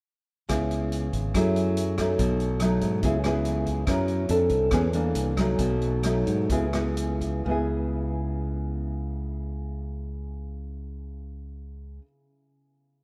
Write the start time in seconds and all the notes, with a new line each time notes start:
0.49 C#2 C#3 B3 E4 G#4, kick, cross-stick, closed hi-hat
0.71 closed hi-hat
0.92 closed hi-hat
1.13 G#1, kick, closed hi-hat
1.34 F#2 F#3 A3 E4 G#4, kick, cross-stick, closed hi-hat
1.56 closed hi-hat
1.77 closed hi-hat
1.98 F#3 A3 D#4, kick, cross-stick, closed hi-hat
2.19 B1 B2, kick, closed hi-hat
2.40 closed hi-hat
2.60 F#3 A3 D#4, cross-stick, closed hi-hat
2.81 G#2, kick, closed hi-hat
3.03 C#2 C#3 B3 E4 G#4, kick, closed hi-hat
3.24 B3 E4 G#4, cross-stick, closed hi-hat
3.45 closed hi-hat
3.66 kick, closed hi-hat
3.87 F#2 F#3 C#4 E4 A#4, kick, cross-stick, closed hi-hat
4.08 closed hi-hat
4.29 F2 C4 D4 A4, closed hi-hat
4.49 C2, kick, closed hi-hat
4.71 E2 E3 B3 C#4 G#4, kick, cross-stick, closed hi-hat
4.93 E3 A#3 D4, closed hi-hat
5.15 C2, closed hi-hat
5.37 F#3 A3 D#4, kick, cross-stick, closed hi-hat
5.59 B1 B2, kick, closed hi-hat
5.81 closed hi-hat
6.03 F#3 A3 D#4, cross-stick, closed hi-hat
6.26 G#2, kick, closed hi-hat
6.50 C#2 C#3 B3 E4 G#4, kick, closed hi-hat
6.73 B3 E4 G#4, cross-stick, closed hi-hat
6.97 closed hi-hat
7.21 kick, closed hi-hat
7.45 C#2 C#3 B3
7.49 E4 G#4